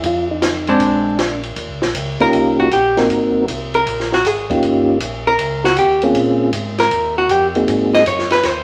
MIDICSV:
0, 0, Header, 1, 5, 480
1, 0, Start_track
1, 0, Tempo, 382166
1, 36, Time_signature, 4, 2, 24, 8
1, 10847, End_track
2, 0, Start_track
2, 0, Title_t, "Hollow-body jazz guitar"
2, 0, Program_c, 0, 26
2, 858, Note_on_c, 0, 56, 53
2, 868, Note_on_c, 0, 60, 50
2, 869, Note_on_c, 0, 62, 61
2, 1458, Note_off_c, 0, 56, 0
2, 1463, Note_off_c, 0, 60, 0
2, 1463, Note_off_c, 0, 62, 0
2, 2782, Note_on_c, 0, 70, 83
2, 3221, Note_off_c, 0, 70, 0
2, 3261, Note_on_c, 0, 66, 70
2, 3408, Note_off_c, 0, 66, 0
2, 3427, Note_on_c, 0, 67, 68
2, 3728, Note_off_c, 0, 67, 0
2, 4709, Note_on_c, 0, 70, 85
2, 5145, Note_off_c, 0, 70, 0
2, 5199, Note_on_c, 0, 66, 74
2, 5357, Note_off_c, 0, 66, 0
2, 5357, Note_on_c, 0, 68, 71
2, 5653, Note_off_c, 0, 68, 0
2, 6623, Note_on_c, 0, 70, 90
2, 7061, Note_off_c, 0, 70, 0
2, 7099, Note_on_c, 0, 66, 84
2, 7248, Note_off_c, 0, 66, 0
2, 7267, Note_on_c, 0, 67, 68
2, 7567, Note_off_c, 0, 67, 0
2, 8538, Note_on_c, 0, 70, 91
2, 8977, Note_off_c, 0, 70, 0
2, 9020, Note_on_c, 0, 66, 77
2, 9191, Note_off_c, 0, 66, 0
2, 9191, Note_on_c, 0, 67, 80
2, 9374, Note_off_c, 0, 67, 0
2, 9978, Note_on_c, 0, 75, 82
2, 10124, Note_off_c, 0, 75, 0
2, 10141, Note_on_c, 0, 73, 82
2, 10440, Note_off_c, 0, 73, 0
2, 10449, Note_on_c, 0, 71, 81
2, 10619, Note_off_c, 0, 71, 0
2, 10619, Note_on_c, 0, 72, 95
2, 10847, Note_off_c, 0, 72, 0
2, 10847, End_track
3, 0, Start_track
3, 0, Title_t, "Tonewheel organ"
3, 0, Program_c, 1, 16
3, 75, Note_on_c, 1, 65, 79
3, 356, Note_off_c, 1, 65, 0
3, 391, Note_on_c, 1, 63, 67
3, 859, Note_on_c, 1, 62, 68
3, 870, Note_off_c, 1, 63, 0
3, 1761, Note_off_c, 1, 62, 0
3, 2763, Note_on_c, 1, 58, 57
3, 2763, Note_on_c, 1, 61, 55
3, 2768, Note_on_c, 1, 63, 52
3, 2773, Note_on_c, 1, 65, 52
3, 2775, Note_on_c, 1, 67, 71
3, 3372, Note_off_c, 1, 58, 0
3, 3372, Note_off_c, 1, 61, 0
3, 3375, Note_off_c, 1, 63, 0
3, 3378, Note_off_c, 1, 65, 0
3, 3378, Note_off_c, 1, 67, 0
3, 3730, Note_on_c, 1, 63, 60
3, 3731, Note_on_c, 1, 60, 63
3, 3732, Note_on_c, 1, 58, 67
3, 3734, Note_on_c, 1, 66, 67
3, 3738, Note_on_c, 1, 70, 69
3, 4336, Note_off_c, 1, 63, 0
3, 4337, Note_off_c, 1, 58, 0
3, 4337, Note_off_c, 1, 60, 0
3, 4339, Note_off_c, 1, 66, 0
3, 4340, Note_off_c, 1, 70, 0
3, 5650, Note_on_c, 1, 61, 60
3, 5650, Note_on_c, 1, 63, 63
3, 5653, Note_on_c, 1, 58, 63
3, 5657, Note_on_c, 1, 65, 62
3, 5658, Note_on_c, 1, 67, 66
3, 6256, Note_off_c, 1, 61, 0
3, 6256, Note_off_c, 1, 63, 0
3, 6258, Note_off_c, 1, 58, 0
3, 6260, Note_off_c, 1, 65, 0
3, 6261, Note_off_c, 1, 67, 0
3, 7576, Note_on_c, 1, 58, 65
3, 7578, Note_on_c, 1, 60, 53
3, 7581, Note_on_c, 1, 61, 56
3, 7583, Note_on_c, 1, 68, 69
3, 7585, Note_on_c, 1, 65, 54
3, 8178, Note_off_c, 1, 58, 0
3, 8179, Note_off_c, 1, 60, 0
3, 8180, Note_off_c, 1, 61, 0
3, 8181, Note_off_c, 1, 68, 0
3, 8182, Note_off_c, 1, 65, 0
3, 9489, Note_on_c, 1, 58, 68
3, 9489, Note_on_c, 1, 60, 61
3, 9492, Note_on_c, 1, 63, 57
3, 9494, Note_on_c, 1, 66, 57
3, 9497, Note_on_c, 1, 68, 70
3, 10091, Note_off_c, 1, 58, 0
3, 10091, Note_off_c, 1, 60, 0
3, 10093, Note_off_c, 1, 63, 0
3, 10094, Note_off_c, 1, 66, 0
3, 10095, Note_off_c, 1, 68, 0
3, 10847, End_track
4, 0, Start_track
4, 0, Title_t, "Tonewheel organ"
4, 0, Program_c, 2, 16
4, 40, Note_on_c, 2, 41, 91
4, 953, Note_off_c, 2, 41, 0
4, 1000, Note_on_c, 2, 34, 72
4, 1914, Note_off_c, 2, 34, 0
4, 1964, Note_on_c, 2, 39, 87
4, 2118, Note_on_c, 2, 37, 51
4, 2119, Note_off_c, 2, 39, 0
4, 2275, Note_on_c, 2, 34, 55
4, 2281, Note_off_c, 2, 37, 0
4, 2428, Note_off_c, 2, 34, 0
4, 2440, Note_on_c, 2, 37, 90
4, 2740, Note_off_c, 2, 37, 0
4, 2762, Note_on_c, 2, 37, 39
4, 2842, Note_off_c, 2, 37, 0
4, 2921, Note_on_c, 2, 36, 79
4, 3389, Note_off_c, 2, 36, 0
4, 3408, Note_on_c, 2, 34, 86
4, 3873, Note_off_c, 2, 34, 0
4, 3885, Note_on_c, 2, 32, 85
4, 4351, Note_off_c, 2, 32, 0
4, 4367, Note_on_c, 2, 36, 85
4, 4832, Note_off_c, 2, 36, 0
4, 4851, Note_on_c, 2, 34, 86
4, 5315, Note_off_c, 2, 34, 0
4, 5331, Note_on_c, 2, 32, 83
4, 5795, Note_off_c, 2, 32, 0
4, 5811, Note_on_c, 2, 31, 93
4, 6274, Note_off_c, 2, 31, 0
4, 6283, Note_on_c, 2, 34, 82
4, 6750, Note_off_c, 2, 34, 0
4, 6763, Note_on_c, 2, 37, 76
4, 7230, Note_off_c, 2, 37, 0
4, 7238, Note_on_c, 2, 39, 89
4, 7707, Note_off_c, 2, 39, 0
4, 7720, Note_on_c, 2, 46, 88
4, 8187, Note_off_c, 2, 46, 0
4, 8196, Note_on_c, 2, 44, 86
4, 8665, Note_off_c, 2, 44, 0
4, 8685, Note_on_c, 2, 39, 80
4, 9149, Note_off_c, 2, 39, 0
4, 9160, Note_on_c, 2, 41, 86
4, 9626, Note_off_c, 2, 41, 0
4, 9638, Note_on_c, 2, 44, 86
4, 10104, Note_off_c, 2, 44, 0
4, 10117, Note_on_c, 2, 42, 86
4, 10582, Note_off_c, 2, 42, 0
4, 10595, Note_on_c, 2, 39, 83
4, 10847, Note_off_c, 2, 39, 0
4, 10847, End_track
5, 0, Start_track
5, 0, Title_t, "Drums"
5, 41, Note_on_c, 9, 36, 31
5, 44, Note_on_c, 9, 51, 54
5, 166, Note_off_c, 9, 36, 0
5, 169, Note_off_c, 9, 51, 0
5, 527, Note_on_c, 9, 44, 59
5, 527, Note_on_c, 9, 51, 55
5, 528, Note_on_c, 9, 38, 65
5, 653, Note_off_c, 9, 44, 0
5, 653, Note_off_c, 9, 51, 0
5, 654, Note_off_c, 9, 38, 0
5, 842, Note_on_c, 9, 51, 39
5, 967, Note_off_c, 9, 51, 0
5, 1000, Note_on_c, 9, 51, 63
5, 1001, Note_on_c, 9, 36, 30
5, 1126, Note_off_c, 9, 51, 0
5, 1127, Note_off_c, 9, 36, 0
5, 1488, Note_on_c, 9, 44, 47
5, 1488, Note_on_c, 9, 51, 57
5, 1490, Note_on_c, 9, 38, 55
5, 1614, Note_off_c, 9, 44, 0
5, 1614, Note_off_c, 9, 51, 0
5, 1615, Note_off_c, 9, 38, 0
5, 1800, Note_on_c, 9, 51, 41
5, 1925, Note_off_c, 9, 51, 0
5, 1961, Note_on_c, 9, 36, 22
5, 1961, Note_on_c, 9, 51, 55
5, 2086, Note_off_c, 9, 51, 0
5, 2087, Note_off_c, 9, 36, 0
5, 2284, Note_on_c, 9, 38, 49
5, 2410, Note_off_c, 9, 38, 0
5, 2444, Note_on_c, 9, 36, 23
5, 2444, Note_on_c, 9, 44, 47
5, 2444, Note_on_c, 9, 51, 70
5, 2570, Note_off_c, 9, 36, 0
5, 2570, Note_off_c, 9, 44, 0
5, 2570, Note_off_c, 9, 51, 0
5, 2766, Note_on_c, 9, 51, 36
5, 2891, Note_off_c, 9, 51, 0
5, 2924, Note_on_c, 9, 51, 53
5, 2925, Note_on_c, 9, 36, 22
5, 3050, Note_off_c, 9, 36, 0
5, 3050, Note_off_c, 9, 51, 0
5, 3406, Note_on_c, 9, 36, 20
5, 3406, Note_on_c, 9, 44, 43
5, 3406, Note_on_c, 9, 51, 52
5, 3531, Note_off_c, 9, 36, 0
5, 3532, Note_off_c, 9, 44, 0
5, 3532, Note_off_c, 9, 51, 0
5, 3732, Note_on_c, 9, 51, 43
5, 3733, Note_on_c, 9, 38, 38
5, 3857, Note_off_c, 9, 51, 0
5, 3858, Note_off_c, 9, 38, 0
5, 3888, Note_on_c, 9, 36, 23
5, 3892, Note_on_c, 9, 51, 51
5, 4014, Note_off_c, 9, 36, 0
5, 4017, Note_off_c, 9, 51, 0
5, 4369, Note_on_c, 9, 36, 22
5, 4373, Note_on_c, 9, 44, 48
5, 4373, Note_on_c, 9, 51, 63
5, 4494, Note_off_c, 9, 36, 0
5, 4498, Note_off_c, 9, 44, 0
5, 4498, Note_off_c, 9, 51, 0
5, 4698, Note_on_c, 9, 51, 43
5, 4823, Note_off_c, 9, 51, 0
5, 4851, Note_on_c, 9, 36, 21
5, 4856, Note_on_c, 9, 51, 59
5, 4977, Note_off_c, 9, 36, 0
5, 4981, Note_off_c, 9, 51, 0
5, 5022, Note_on_c, 9, 38, 28
5, 5148, Note_off_c, 9, 38, 0
5, 5178, Note_on_c, 9, 38, 41
5, 5304, Note_off_c, 9, 38, 0
5, 5329, Note_on_c, 9, 36, 18
5, 5332, Note_on_c, 9, 44, 44
5, 5332, Note_on_c, 9, 51, 62
5, 5455, Note_off_c, 9, 36, 0
5, 5458, Note_off_c, 9, 44, 0
5, 5458, Note_off_c, 9, 51, 0
5, 5649, Note_on_c, 9, 36, 47
5, 5656, Note_on_c, 9, 51, 47
5, 5775, Note_off_c, 9, 36, 0
5, 5781, Note_off_c, 9, 51, 0
5, 5808, Note_on_c, 9, 51, 49
5, 5809, Note_on_c, 9, 36, 21
5, 5934, Note_off_c, 9, 36, 0
5, 5934, Note_off_c, 9, 51, 0
5, 6283, Note_on_c, 9, 44, 51
5, 6283, Note_on_c, 9, 51, 70
5, 6285, Note_on_c, 9, 36, 19
5, 6409, Note_off_c, 9, 44, 0
5, 6409, Note_off_c, 9, 51, 0
5, 6410, Note_off_c, 9, 36, 0
5, 6764, Note_on_c, 9, 36, 17
5, 6766, Note_on_c, 9, 51, 62
5, 6890, Note_off_c, 9, 36, 0
5, 6891, Note_off_c, 9, 51, 0
5, 7087, Note_on_c, 9, 38, 47
5, 7213, Note_off_c, 9, 38, 0
5, 7240, Note_on_c, 9, 44, 45
5, 7240, Note_on_c, 9, 51, 59
5, 7243, Note_on_c, 9, 36, 21
5, 7366, Note_off_c, 9, 44, 0
5, 7366, Note_off_c, 9, 51, 0
5, 7368, Note_off_c, 9, 36, 0
5, 7555, Note_on_c, 9, 51, 44
5, 7681, Note_off_c, 9, 51, 0
5, 7719, Note_on_c, 9, 51, 59
5, 7720, Note_on_c, 9, 36, 25
5, 7844, Note_off_c, 9, 51, 0
5, 7846, Note_off_c, 9, 36, 0
5, 8196, Note_on_c, 9, 44, 50
5, 8196, Note_on_c, 9, 51, 63
5, 8202, Note_on_c, 9, 36, 17
5, 8321, Note_off_c, 9, 44, 0
5, 8321, Note_off_c, 9, 51, 0
5, 8327, Note_off_c, 9, 36, 0
5, 8520, Note_on_c, 9, 51, 43
5, 8521, Note_on_c, 9, 38, 38
5, 8646, Note_off_c, 9, 51, 0
5, 8647, Note_off_c, 9, 38, 0
5, 8679, Note_on_c, 9, 51, 61
5, 8682, Note_on_c, 9, 36, 18
5, 8805, Note_off_c, 9, 51, 0
5, 8807, Note_off_c, 9, 36, 0
5, 9159, Note_on_c, 9, 44, 41
5, 9159, Note_on_c, 9, 51, 57
5, 9161, Note_on_c, 9, 36, 21
5, 9284, Note_off_c, 9, 44, 0
5, 9284, Note_off_c, 9, 51, 0
5, 9286, Note_off_c, 9, 36, 0
5, 9482, Note_on_c, 9, 51, 44
5, 9607, Note_off_c, 9, 51, 0
5, 9641, Note_on_c, 9, 36, 25
5, 9643, Note_on_c, 9, 51, 58
5, 9766, Note_off_c, 9, 36, 0
5, 9768, Note_off_c, 9, 51, 0
5, 9965, Note_on_c, 9, 38, 37
5, 10090, Note_off_c, 9, 38, 0
5, 10119, Note_on_c, 9, 36, 23
5, 10121, Note_on_c, 9, 44, 50
5, 10121, Note_on_c, 9, 51, 68
5, 10244, Note_off_c, 9, 36, 0
5, 10247, Note_off_c, 9, 44, 0
5, 10247, Note_off_c, 9, 51, 0
5, 10281, Note_on_c, 9, 38, 30
5, 10407, Note_off_c, 9, 38, 0
5, 10428, Note_on_c, 9, 51, 45
5, 10435, Note_on_c, 9, 38, 42
5, 10554, Note_off_c, 9, 51, 0
5, 10561, Note_off_c, 9, 38, 0
5, 10591, Note_on_c, 9, 51, 62
5, 10592, Note_on_c, 9, 38, 39
5, 10595, Note_on_c, 9, 36, 19
5, 10716, Note_off_c, 9, 51, 0
5, 10717, Note_off_c, 9, 38, 0
5, 10720, Note_off_c, 9, 36, 0
5, 10847, End_track
0, 0, End_of_file